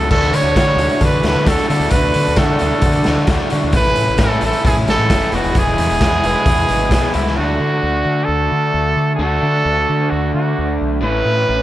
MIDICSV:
0, 0, Header, 1, 6, 480
1, 0, Start_track
1, 0, Tempo, 454545
1, 120, Time_signature, 4, 2, 24, 8
1, 12277, End_track
2, 0, Start_track
2, 0, Title_t, "Overdriven electric guitar"
2, 0, Program_c, 0, 29
2, 7800, Note_on_c, 0, 69, 86
2, 9722, Note_off_c, 0, 69, 0
2, 9727, Note_on_c, 0, 69, 93
2, 12277, Note_off_c, 0, 69, 0
2, 12277, End_track
3, 0, Start_track
3, 0, Title_t, "Trumpet"
3, 0, Program_c, 1, 56
3, 0, Note_on_c, 1, 69, 91
3, 113, Note_off_c, 1, 69, 0
3, 119, Note_on_c, 1, 69, 111
3, 371, Note_on_c, 1, 73, 116
3, 387, Note_off_c, 1, 69, 0
3, 1083, Note_off_c, 1, 73, 0
3, 1098, Note_on_c, 1, 71, 92
3, 1311, Note_off_c, 1, 71, 0
3, 1342, Note_on_c, 1, 71, 95
3, 1565, Note_on_c, 1, 69, 92
3, 1581, Note_off_c, 1, 71, 0
3, 1773, Note_off_c, 1, 69, 0
3, 1780, Note_on_c, 1, 69, 96
3, 2005, Note_on_c, 1, 71, 115
3, 2021, Note_off_c, 1, 69, 0
3, 2505, Note_on_c, 1, 69, 91
3, 2521, Note_off_c, 1, 71, 0
3, 3706, Note_off_c, 1, 69, 0
3, 3973, Note_on_c, 1, 71, 127
3, 4444, Note_on_c, 1, 69, 110
3, 4460, Note_off_c, 1, 71, 0
3, 4676, Note_off_c, 1, 69, 0
3, 4712, Note_on_c, 1, 69, 102
3, 4915, Note_off_c, 1, 69, 0
3, 4920, Note_on_c, 1, 68, 94
3, 5025, Note_off_c, 1, 68, 0
3, 5169, Note_on_c, 1, 69, 110
3, 5638, Note_on_c, 1, 66, 94
3, 5654, Note_off_c, 1, 69, 0
3, 5891, Note_on_c, 1, 68, 111
3, 5907, Note_off_c, 1, 66, 0
3, 7534, Note_off_c, 1, 68, 0
3, 7540, Note_on_c, 1, 64, 85
3, 7775, Note_on_c, 1, 66, 101
3, 7791, Note_off_c, 1, 64, 0
3, 8704, Note_on_c, 1, 69, 98
3, 8720, Note_off_c, 1, 66, 0
3, 9659, Note_off_c, 1, 69, 0
3, 9666, Note_on_c, 1, 69, 113
3, 10663, Note_on_c, 1, 66, 87
3, 10679, Note_off_c, 1, 69, 0
3, 10910, Note_off_c, 1, 66, 0
3, 10920, Note_on_c, 1, 66, 81
3, 11366, Note_off_c, 1, 66, 0
3, 11657, Note_on_c, 1, 71, 120
3, 12277, Note_off_c, 1, 71, 0
3, 12277, End_track
4, 0, Start_track
4, 0, Title_t, "Overdriven electric guitar"
4, 0, Program_c, 2, 29
4, 0, Note_on_c, 2, 57, 94
4, 0, Note_on_c, 2, 61, 93
4, 0, Note_on_c, 2, 66, 87
4, 108, Note_off_c, 2, 57, 0
4, 109, Note_off_c, 2, 61, 0
4, 109, Note_on_c, 2, 50, 88
4, 112, Note_on_c, 2, 57, 97
4, 118, Note_on_c, 2, 62, 102
4, 125, Note_off_c, 2, 66, 0
4, 129, Note_on_c, 2, 66, 97
4, 590, Note_off_c, 2, 50, 0
4, 594, Note_on_c, 2, 50, 77
4, 598, Note_off_c, 2, 57, 0
4, 602, Note_off_c, 2, 62, 0
4, 602, Note_on_c, 2, 57, 78
4, 606, Note_on_c, 2, 62, 82
4, 611, Note_off_c, 2, 66, 0
4, 615, Note_on_c, 2, 66, 86
4, 817, Note_off_c, 2, 50, 0
4, 821, Note_on_c, 2, 50, 75
4, 824, Note_off_c, 2, 57, 0
4, 828, Note_on_c, 2, 57, 81
4, 832, Note_off_c, 2, 62, 0
4, 836, Note_off_c, 2, 66, 0
4, 836, Note_on_c, 2, 62, 92
4, 840, Note_on_c, 2, 66, 86
4, 1064, Note_off_c, 2, 50, 0
4, 1075, Note_off_c, 2, 62, 0
4, 1077, Note_on_c, 2, 50, 88
4, 1078, Note_off_c, 2, 57, 0
4, 1081, Note_off_c, 2, 66, 0
4, 1083, Note_on_c, 2, 57, 99
4, 1088, Note_on_c, 2, 62, 100
4, 1094, Note_on_c, 2, 66, 95
4, 1528, Note_off_c, 2, 50, 0
4, 1540, Note_on_c, 2, 50, 85
4, 1552, Note_off_c, 2, 62, 0
4, 1553, Note_off_c, 2, 57, 0
4, 1556, Note_off_c, 2, 66, 0
4, 1557, Note_on_c, 2, 57, 95
4, 1565, Note_on_c, 2, 62, 86
4, 1568, Note_on_c, 2, 66, 98
4, 1779, Note_off_c, 2, 50, 0
4, 1792, Note_off_c, 2, 62, 0
4, 1792, Note_on_c, 2, 50, 78
4, 1793, Note_off_c, 2, 57, 0
4, 1796, Note_off_c, 2, 66, 0
4, 1797, Note_on_c, 2, 57, 89
4, 1804, Note_on_c, 2, 62, 91
4, 1809, Note_on_c, 2, 66, 96
4, 2024, Note_off_c, 2, 50, 0
4, 2037, Note_on_c, 2, 50, 90
4, 2038, Note_off_c, 2, 62, 0
4, 2043, Note_off_c, 2, 57, 0
4, 2043, Note_off_c, 2, 66, 0
4, 2048, Note_on_c, 2, 57, 94
4, 2051, Note_on_c, 2, 62, 111
4, 2056, Note_on_c, 2, 66, 107
4, 2485, Note_off_c, 2, 50, 0
4, 2498, Note_on_c, 2, 50, 86
4, 2499, Note_off_c, 2, 62, 0
4, 2509, Note_off_c, 2, 57, 0
4, 2510, Note_off_c, 2, 66, 0
4, 2512, Note_on_c, 2, 62, 82
4, 2513, Note_on_c, 2, 57, 82
4, 2522, Note_on_c, 2, 66, 88
4, 2726, Note_off_c, 2, 50, 0
4, 2735, Note_off_c, 2, 57, 0
4, 2739, Note_on_c, 2, 50, 79
4, 2743, Note_off_c, 2, 62, 0
4, 2747, Note_off_c, 2, 66, 0
4, 2748, Note_on_c, 2, 57, 85
4, 2755, Note_on_c, 2, 62, 86
4, 2760, Note_on_c, 2, 66, 94
4, 2950, Note_off_c, 2, 50, 0
4, 2961, Note_off_c, 2, 57, 0
4, 2963, Note_on_c, 2, 50, 96
4, 2965, Note_off_c, 2, 62, 0
4, 2972, Note_off_c, 2, 66, 0
4, 2974, Note_on_c, 2, 57, 92
4, 2978, Note_on_c, 2, 62, 100
4, 2985, Note_on_c, 2, 66, 108
4, 3443, Note_off_c, 2, 50, 0
4, 3450, Note_off_c, 2, 57, 0
4, 3455, Note_on_c, 2, 50, 80
4, 3459, Note_off_c, 2, 62, 0
4, 3463, Note_on_c, 2, 57, 87
4, 3468, Note_off_c, 2, 66, 0
4, 3471, Note_on_c, 2, 62, 87
4, 3480, Note_on_c, 2, 66, 96
4, 3681, Note_off_c, 2, 50, 0
4, 3689, Note_off_c, 2, 57, 0
4, 3693, Note_on_c, 2, 50, 84
4, 3696, Note_off_c, 2, 62, 0
4, 3701, Note_on_c, 2, 57, 98
4, 3706, Note_off_c, 2, 66, 0
4, 3709, Note_on_c, 2, 62, 92
4, 3718, Note_on_c, 2, 66, 97
4, 3927, Note_off_c, 2, 50, 0
4, 3931, Note_off_c, 2, 57, 0
4, 3935, Note_off_c, 2, 62, 0
4, 3936, Note_on_c, 2, 45, 97
4, 3940, Note_off_c, 2, 66, 0
4, 3946, Note_on_c, 2, 52, 92
4, 3953, Note_on_c, 2, 57, 99
4, 3957, Note_on_c, 2, 61, 107
4, 3965, Note_on_c, 2, 64, 112
4, 4416, Note_off_c, 2, 45, 0
4, 4429, Note_on_c, 2, 45, 87
4, 4434, Note_off_c, 2, 57, 0
4, 4438, Note_off_c, 2, 52, 0
4, 4441, Note_off_c, 2, 61, 0
4, 4442, Note_on_c, 2, 52, 87
4, 4447, Note_on_c, 2, 57, 91
4, 4454, Note_on_c, 2, 61, 87
4, 4455, Note_off_c, 2, 64, 0
4, 4460, Note_on_c, 2, 64, 88
4, 4663, Note_off_c, 2, 45, 0
4, 4675, Note_on_c, 2, 45, 90
4, 4679, Note_off_c, 2, 57, 0
4, 4685, Note_off_c, 2, 52, 0
4, 4685, Note_off_c, 2, 61, 0
4, 4689, Note_on_c, 2, 52, 83
4, 4691, Note_on_c, 2, 57, 89
4, 4695, Note_off_c, 2, 64, 0
4, 4698, Note_on_c, 2, 61, 89
4, 4699, Note_on_c, 2, 64, 97
4, 4897, Note_off_c, 2, 45, 0
4, 4903, Note_off_c, 2, 52, 0
4, 4910, Note_on_c, 2, 45, 106
4, 4915, Note_off_c, 2, 57, 0
4, 4916, Note_on_c, 2, 52, 103
4, 4918, Note_off_c, 2, 61, 0
4, 4926, Note_off_c, 2, 64, 0
4, 4928, Note_on_c, 2, 57, 103
4, 4931, Note_on_c, 2, 61, 109
4, 4938, Note_on_c, 2, 64, 109
4, 5391, Note_off_c, 2, 45, 0
4, 5396, Note_off_c, 2, 52, 0
4, 5397, Note_off_c, 2, 57, 0
4, 5403, Note_off_c, 2, 61, 0
4, 5403, Note_on_c, 2, 45, 84
4, 5409, Note_on_c, 2, 52, 89
4, 5409, Note_on_c, 2, 57, 99
4, 5414, Note_off_c, 2, 64, 0
4, 5415, Note_on_c, 2, 61, 105
4, 5427, Note_on_c, 2, 64, 101
4, 5621, Note_off_c, 2, 45, 0
4, 5623, Note_off_c, 2, 52, 0
4, 5624, Note_off_c, 2, 57, 0
4, 5627, Note_off_c, 2, 61, 0
4, 5632, Note_off_c, 2, 64, 0
4, 5644, Note_on_c, 2, 40, 101
4, 5649, Note_on_c, 2, 47, 110
4, 5654, Note_on_c, 2, 52, 101
4, 5656, Note_on_c, 2, 56, 106
4, 5666, Note_on_c, 2, 64, 110
4, 5668, Note_on_c, 2, 59, 109
4, 5869, Note_off_c, 2, 40, 0
4, 5877, Note_off_c, 2, 47, 0
4, 5882, Note_off_c, 2, 52, 0
4, 5882, Note_on_c, 2, 40, 102
4, 5887, Note_off_c, 2, 56, 0
4, 5889, Note_off_c, 2, 59, 0
4, 5890, Note_on_c, 2, 47, 91
4, 5895, Note_on_c, 2, 52, 102
4, 5900, Note_on_c, 2, 56, 100
4, 5901, Note_on_c, 2, 59, 114
4, 5905, Note_off_c, 2, 64, 0
4, 5918, Note_on_c, 2, 64, 113
4, 6338, Note_off_c, 2, 40, 0
4, 6345, Note_off_c, 2, 47, 0
4, 6350, Note_on_c, 2, 40, 75
4, 6357, Note_on_c, 2, 47, 82
4, 6360, Note_off_c, 2, 52, 0
4, 6361, Note_off_c, 2, 56, 0
4, 6365, Note_off_c, 2, 59, 0
4, 6369, Note_off_c, 2, 64, 0
4, 6373, Note_on_c, 2, 52, 84
4, 6373, Note_on_c, 2, 56, 80
4, 6378, Note_on_c, 2, 59, 81
4, 6382, Note_on_c, 2, 64, 95
4, 6573, Note_off_c, 2, 40, 0
4, 6583, Note_off_c, 2, 47, 0
4, 6585, Note_on_c, 2, 40, 80
4, 6589, Note_off_c, 2, 52, 0
4, 6589, Note_off_c, 2, 56, 0
4, 6596, Note_on_c, 2, 47, 82
4, 6601, Note_off_c, 2, 64, 0
4, 6601, Note_on_c, 2, 56, 84
4, 6602, Note_off_c, 2, 59, 0
4, 6602, Note_on_c, 2, 52, 93
4, 6614, Note_on_c, 2, 59, 90
4, 6614, Note_on_c, 2, 64, 94
4, 6813, Note_off_c, 2, 40, 0
4, 6818, Note_off_c, 2, 47, 0
4, 6826, Note_on_c, 2, 40, 95
4, 6829, Note_off_c, 2, 52, 0
4, 6831, Note_off_c, 2, 56, 0
4, 6831, Note_on_c, 2, 47, 97
4, 6833, Note_off_c, 2, 59, 0
4, 6842, Note_on_c, 2, 52, 100
4, 6844, Note_off_c, 2, 64, 0
4, 6844, Note_on_c, 2, 56, 100
4, 6845, Note_on_c, 2, 59, 107
4, 6856, Note_on_c, 2, 64, 103
4, 7281, Note_off_c, 2, 40, 0
4, 7287, Note_off_c, 2, 47, 0
4, 7293, Note_off_c, 2, 56, 0
4, 7293, Note_on_c, 2, 40, 93
4, 7294, Note_off_c, 2, 52, 0
4, 7299, Note_off_c, 2, 59, 0
4, 7300, Note_on_c, 2, 47, 83
4, 7306, Note_on_c, 2, 56, 87
4, 7307, Note_off_c, 2, 64, 0
4, 7307, Note_on_c, 2, 52, 88
4, 7312, Note_on_c, 2, 59, 94
4, 7319, Note_on_c, 2, 64, 95
4, 7523, Note_off_c, 2, 40, 0
4, 7529, Note_off_c, 2, 47, 0
4, 7536, Note_off_c, 2, 52, 0
4, 7536, Note_on_c, 2, 40, 89
4, 7542, Note_off_c, 2, 56, 0
4, 7542, Note_on_c, 2, 47, 91
4, 7546, Note_off_c, 2, 59, 0
4, 7548, Note_on_c, 2, 52, 92
4, 7555, Note_on_c, 2, 56, 96
4, 7556, Note_off_c, 2, 64, 0
4, 7559, Note_on_c, 2, 59, 94
4, 7569, Note_on_c, 2, 64, 99
4, 7767, Note_off_c, 2, 40, 0
4, 7770, Note_off_c, 2, 47, 0
4, 7773, Note_off_c, 2, 52, 0
4, 7777, Note_off_c, 2, 56, 0
4, 7779, Note_off_c, 2, 59, 0
4, 7781, Note_on_c, 2, 50, 77
4, 7784, Note_off_c, 2, 64, 0
4, 7792, Note_on_c, 2, 57, 82
4, 7804, Note_on_c, 2, 62, 88
4, 7814, Note_on_c, 2, 66, 89
4, 9692, Note_off_c, 2, 50, 0
4, 9705, Note_on_c, 2, 50, 72
4, 9706, Note_off_c, 2, 62, 0
4, 9711, Note_off_c, 2, 66, 0
4, 9714, Note_off_c, 2, 57, 0
4, 9718, Note_on_c, 2, 57, 90
4, 9739, Note_on_c, 2, 62, 81
4, 9743, Note_on_c, 2, 66, 94
4, 11622, Note_off_c, 2, 50, 0
4, 11628, Note_on_c, 2, 45, 91
4, 11639, Note_off_c, 2, 62, 0
4, 11641, Note_off_c, 2, 66, 0
4, 11643, Note_on_c, 2, 52, 90
4, 11645, Note_off_c, 2, 57, 0
4, 11649, Note_on_c, 2, 57, 85
4, 11656, Note_on_c, 2, 61, 93
4, 11666, Note_on_c, 2, 64, 90
4, 12277, Note_off_c, 2, 45, 0
4, 12277, Note_off_c, 2, 52, 0
4, 12277, Note_off_c, 2, 57, 0
4, 12277, Note_off_c, 2, 61, 0
4, 12277, Note_off_c, 2, 64, 0
4, 12277, End_track
5, 0, Start_track
5, 0, Title_t, "Fingered electric bass"
5, 0, Program_c, 3, 33
5, 109, Note_on_c, 3, 38, 97
5, 316, Note_off_c, 3, 38, 0
5, 352, Note_on_c, 3, 50, 99
5, 448, Note_off_c, 3, 50, 0
5, 454, Note_on_c, 3, 38, 84
5, 566, Note_off_c, 3, 38, 0
5, 595, Note_on_c, 3, 50, 89
5, 799, Note_off_c, 3, 50, 0
5, 806, Note_on_c, 3, 38, 99
5, 921, Note_off_c, 3, 38, 0
5, 1064, Note_on_c, 3, 50, 88
5, 1272, Note_off_c, 3, 50, 0
5, 1300, Note_on_c, 3, 38, 89
5, 1408, Note_off_c, 3, 38, 0
5, 1432, Note_on_c, 3, 50, 93
5, 1535, Note_off_c, 3, 50, 0
5, 1544, Note_on_c, 3, 38, 100
5, 1651, Note_off_c, 3, 38, 0
5, 1792, Note_on_c, 3, 50, 95
5, 1894, Note_off_c, 3, 50, 0
5, 1900, Note_on_c, 3, 38, 90
5, 2008, Note_off_c, 3, 38, 0
5, 2025, Note_on_c, 3, 38, 99
5, 2232, Note_off_c, 3, 38, 0
5, 2276, Note_on_c, 3, 50, 93
5, 2376, Note_off_c, 3, 50, 0
5, 2402, Note_on_c, 3, 38, 83
5, 2491, Note_off_c, 3, 38, 0
5, 2497, Note_on_c, 3, 50, 92
5, 2707, Note_off_c, 3, 50, 0
5, 2763, Note_on_c, 3, 38, 103
5, 2860, Note_off_c, 3, 38, 0
5, 2972, Note_on_c, 3, 50, 93
5, 3183, Note_off_c, 3, 50, 0
5, 3244, Note_on_c, 3, 38, 85
5, 3340, Note_off_c, 3, 38, 0
5, 3353, Note_on_c, 3, 50, 94
5, 3451, Note_off_c, 3, 50, 0
5, 3458, Note_on_c, 3, 38, 94
5, 3565, Note_off_c, 3, 38, 0
5, 3720, Note_on_c, 3, 50, 90
5, 3818, Note_off_c, 3, 50, 0
5, 3838, Note_on_c, 3, 38, 97
5, 3936, Note_off_c, 3, 38, 0
5, 3941, Note_on_c, 3, 33, 102
5, 4148, Note_off_c, 3, 33, 0
5, 4202, Note_on_c, 3, 45, 97
5, 4298, Note_off_c, 3, 45, 0
5, 4317, Note_on_c, 3, 33, 86
5, 4415, Note_off_c, 3, 33, 0
5, 4420, Note_on_c, 3, 45, 95
5, 4627, Note_off_c, 3, 45, 0
5, 4664, Note_on_c, 3, 33, 101
5, 4767, Note_off_c, 3, 33, 0
5, 4909, Note_on_c, 3, 45, 94
5, 5111, Note_off_c, 3, 45, 0
5, 5141, Note_on_c, 3, 33, 88
5, 5245, Note_off_c, 3, 33, 0
5, 5268, Note_on_c, 3, 45, 99
5, 5369, Note_off_c, 3, 45, 0
5, 5387, Note_on_c, 3, 30, 100
5, 5489, Note_off_c, 3, 30, 0
5, 5621, Note_on_c, 3, 28, 91
5, 5725, Note_off_c, 3, 28, 0
5, 5746, Note_on_c, 3, 28, 94
5, 5848, Note_off_c, 3, 28, 0
5, 5864, Note_on_c, 3, 28, 98
5, 6068, Note_off_c, 3, 28, 0
5, 6104, Note_on_c, 3, 40, 97
5, 6207, Note_off_c, 3, 40, 0
5, 6231, Note_on_c, 3, 28, 83
5, 6330, Note_off_c, 3, 28, 0
5, 6347, Note_on_c, 3, 40, 93
5, 6550, Note_off_c, 3, 40, 0
5, 6594, Note_on_c, 3, 28, 94
5, 6692, Note_off_c, 3, 28, 0
5, 6819, Note_on_c, 3, 40, 92
5, 7025, Note_off_c, 3, 40, 0
5, 7070, Note_on_c, 3, 32, 88
5, 7285, Note_off_c, 3, 32, 0
5, 7291, Note_on_c, 3, 35, 77
5, 7514, Note_off_c, 3, 35, 0
5, 7547, Note_on_c, 3, 37, 85
5, 7763, Note_off_c, 3, 37, 0
5, 7793, Note_on_c, 3, 38, 93
5, 7994, Note_off_c, 3, 38, 0
5, 8024, Note_on_c, 3, 50, 75
5, 8229, Note_off_c, 3, 50, 0
5, 8267, Note_on_c, 3, 38, 83
5, 8471, Note_off_c, 3, 38, 0
5, 8503, Note_on_c, 3, 50, 80
5, 8709, Note_off_c, 3, 50, 0
5, 8745, Note_on_c, 3, 38, 92
5, 8950, Note_off_c, 3, 38, 0
5, 8993, Note_on_c, 3, 50, 79
5, 9195, Note_off_c, 3, 50, 0
5, 9228, Note_on_c, 3, 38, 84
5, 9433, Note_off_c, 3, 38, 0
5, 9465, Note_on_c, 3, 50, 82
5, 9671, Note_off_c, 3, 50, 0
5, 9700, Note_on_c, 3, 38, 90
5, 9909, Note_off_c, 3, 38, 0
5, 9951, Note_on_c, 3, 50, 78
5, 10156, Note_off_c, 3, 50, 0
5, 10190, Note_on_c, 3, 38, 93
5, 10396, Note_off_c, 3, 38, 0
5, 10447, Note_on_c, 3, 50, 83
5, 10646, Note_off_c, 3, 50, 0
5, 10684, Note_on_c, 3, 38, 97
5, 10884, Note_off_c, 3, 38, 0
5, 10922, Note_on_c, 3, 50, 81
5, 11124, Note_off_c, 3, 50, 0
5, 11178, Note_on_c, 3, 38, 92
5, 11373, Note_off_c, 3, 38, 0
5, 11415, Note_on_c, 3, 35, 80
5, 11612, Note_off_c, 3, 35, 0
5, 11638, Note_on_c, 3, 33, 89
5, 11842, Note_off_c, 3, 33, 0
5, 11881, Note_on_c, 3, 45, 82
5, 12085, Note_off_c, 3, 45, 0
5, 12130, Note_on_c, 3, 33, 93
5, 12277, Note_off_c, 3, 33, 0
5, 12277, End_track
6, 0, Start_track
6, 0, Title_t, "Drums"
6, 112, Note_on_c, 9, 49, 101
6, 115, Note_on_c, 9, 36, 110
6, 218, Note_off_c, 9, 49, 0
6, 221, Note_off_c, 9, 36, 0
6, 232, Note_on_c, 9, 42, 43
6, 337, Note_off_c, 9, 42, 0
6, 354, Note_on_c, 9, 42, 70
6, 459, Note_off_c, 9, 42, 0
6, 593, Note_on_c, 9, 36, 108
6, 593, Note_on_c, 9, 42, 98
6, 603, Note_on_c, 9, 38, 111
6, 699, Note_off_c, 9, 36, 0
6, 699, Note_off_c, 9, 42, 0
6, 708, Note_off_c, 9, 38, 0
6, 827, Note_on_c, 9, 42, 74
6, 932, Note_off_c, 9, 42, 0
6, 943, Note_on_c, 9, 42, 47
6, 1048, Note_off_c, 9, 42, 0
6, 1064, Note_on_c, 9, 42, 96
6, 1069, Note_on_c, 9, 36, 114
6, 1169, Note_off_c, 9, 42, 0
6, 1175, Note_off_c, 9, 36, 0
6, 1303, Note_on_c, 9, 42, 74
6, 1312, Note_on_c, 9, 38, 79
6, 1408, Note_off_c, 9, 42, 0
6, 1418, Note_off_c, 9, 38, 0
6, 1546, Note_on_c, 9, 42, 101
6, 1549, Note_on_c, 9, 36, 112
6, 1555, Note_on_c, 9, 38, 102
6, 1651, Note_off_c, 9, 42, 0
6, 1654, Note_off_c, 9, 36, 0
6, 1661, Note_off_c, 9, 38, 0
6, 1664, Note_on_c, 9, 42, 46
6, 1770, Note_off_c, 9, 42, 0
6, 1794, Note_on_c, 9, 42, 75
6, 1900, Note_off_c, 9, 42, 0
6, 1907, Note_on_c, 9, 42, 46
6, 2011, Note_off_c, 9, 42, 0
6, 2011, Note_on_c, 9, 42, 100
6, 2023, Note_on_c, 9, 36, 109
6, 2117, Note_off_c, 9, 42, 0
6, 2129, Note_off_c, 9, 36, 0
6, 2257, Note_on_c, 9, 42, 75
6, 2362, Note_off_c, 9, 42, 0
6, 2378, Note_on_c, 9, 42, 49
6, 2484, Note_off_c, 9, 42, 0
6, 2494, Note_on_c, 9, 42, 100
6, 2503, Note_on_c, 9, 36, 115
6, 2504, Note_on_c, 9, 38, 114
6, 2600, Note_off_c, 9, 42, 0
6, 2608, Note_off_c, 9, 36, 0
6, 2610, Note_off_c, 9, 38, 0
6, 2734, Note_on_c, 9, 42, 77
6, 2839, Note_off_c, 9, 42, 0
6, 2972, Note_on_c, 9, 42, 104
6, 2979, Note_on_c, 9, 36, 121
6, 3078, Note_off_c, 9, 42, 0
6, 3085, Note_off_c, 9, 36, 0
6, 3092, Note_on_c, 9, 42, 49
6, 3198, Note_off_c, 9, 42, 0
6, 3209, Note_on_c, 9, 42, 70
6, 3219, Note_on_c, 9, 38, 80
6, 3315, Note_off_c, 9, 42, 0
6, 3325, Note_off_c, 9, 38, 0
6, 3452, Note_on_c, 9, 42, 93
6, 3460, Note_on_c, 9, 36, 112
6, 3462, Note_on_c, 9, 38, 112
6, 3558, Note_off_c, 9, 42, 0
6, 3566, Note_off_c, 9, 36, 0
6, 3567, Note_off_c, 9, 38, 0
6, 3695, Note_on_c, 9, 42, 73
6, 3800, Note_off_c, 9, 42, 0
6, 3934, Note_on_c, 9, 42, 98
6, 3940, Note_on_c, 9, 36, 116
6, 4039, Note_off_c, 9, 42, 0
6, 4046, Note_off_c, 9, 36, 0
6, 4055, Note_on_c, 9, 42, 44
6, 4161, Note_off_c, 9, 42, 0
6, 4177, Note_on_c, 9, 42, 67
6, 4282, Note_off_c, 9, 42, 0
6, 4411, Note_on_c, 9, 42, 98
6, 4421, Note_on_c, 9, 38, 114
6, 4422, Note_on_c, 9, 36, 118
6, 4517, Note_off_c, 9, 42, 0
6, 4526, Note_off_c, 9, 38, 0
6, 4527, Note_off_c, 9, 36, 0
6, 4656, Note_on_c, 9, 42, 73
6, 4762, Note_off_c, 9, 42, 0
6, 4783, Note_on_c, 9, 42, 45
6, 4888, Note_off_c, 9, 42, 0
6, 4907, Note_on_c, 9, 36, 121
6, 4910, Note_on_c, 9, 42, 96
6, 5013, Note_off_c, 9, 36, 0
6, 5015, Note_off_c, 9, 42, 0
6, 5149, Note_on_c, 9, 42, 72
6, 5159, Note_on_c, 9, 38, 84
6, 5255, Note_off_c, 9, 42, 0
6, 5264, Note_off_c, 9, 38, 0
6, 5383, Note_on_c, 9, 42, 103
6, 5386, Note_on_c, 9, 36, 110
6, 5392, Note_on_c, 9, 38, 109
6, 5488, Note_off_c, 9, 42, 0
6, 5491, Note_off_c, 9, 36, 0
6, 5498, Note_off_c, 9, 38, 0
6, 5498, Note_on_c, 9, 42, 48
6, 5603, Note_off_c, 9, 42, 0
6, 5616, Note_on_c, 9, 42, 72
6, 5722, Note_off_c, 9, 42, 0
6, 5742, Note_on_c, 9, 42, 45
6, 5848, Note_off_c, 9, 42, 0
6, 5859, Note_on_c, 9, 42, 98
6, 5863, Note_on_c, 9, 36, 108
6, 5965, Note_off_c, 9, 42, 0
6, 5969, Note_off_c, 9, 36, 0
6, 6103, Note_on_c, 9, 42, 74
6, 6209, Note_off_c, 9, 42, 0
6, 6232, Note_on_c, 9, 42, 48
6, 6337, Note_off_c, 9, 42, 0
6, 6345, Note_on_c, 9, 36, 113
6, 6345, Note_on_c, 9, 42, 104
6, 6354, Note_on_c, 9, 38, 111
6, 6450, Note_off_c, 9, 42, 0
6, 6451, Note_off_c, 9, 36, 0
6, 6460, Note_off_c, 9, 38, 0
6, 6584, Note_on_c, 9, 42, 80
6, 6690, Note_off_c, 9, 42, 0
6, 6817, Note_on_c, 9, 42, 102
6, 6820, Note_on_c, 9, 36, 117
6, 6922, Note_off_c, 9, 42, 0
6, 6926, Note_off_c, 9, 36, 0
6, 6940, Note_on_c, 9, 42, 49
6, 7046, Note_off_c, 9, 42, 0
6, 7059, Note_on_c, 9, 42, 76
6, 7165, Note_off_c, 9, 42, 0
6, 7296, Note_on_c, 9, 42, 101
6, 7297, Note_on_c, 9, 36, 111
6, 7306, Note_on_c, 9, 38, 106
6, 7402, Note_off_c, 9, 42, 0
6, 7403, Note_off_c, 9, 36, 0
6, 7412, Note_off_c, 9, 38, 0
6, 7534, Note_on_c, 9, 42, 73
6, 7640, Note_off_c, 9, 42, 0
6, 7668, Note_on_c, 9, 38, 31
6, 7774, Note_off_c, 9, 38, 0
6, 12277, End_track
0, 0, End_of_file